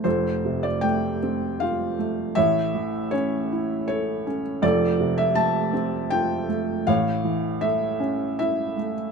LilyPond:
<<
  \new Staff \with { instrumentName = "Felt piano" } { \time 3/4 \key f \major \tempo 4 = 79 << { c''8. d''16 g''4 f''4 | e''4 cis''4 cis''8. r16 | d''8. e''16 a''4 g''4 | f''4 e''4 e''8. r16 | } \\ { a'4. r4. | cis''4. r4. | a'4. r4. | cis''4. r4. | } >> }
  \new Staff \with { instrumentName = "Felt piano" } { \time 3/4 \key f \major <f,, f,>8 c8 a8 c'8 f'8 a8 | <a,, a,>8 e8 cis'8 e'8 a'8 cis'8 | <f,, f,>8 c8 a8 c'8 f'8 a8 | <a,, a,>8 e8 a8 cis'8 e'8 a8 | }
>>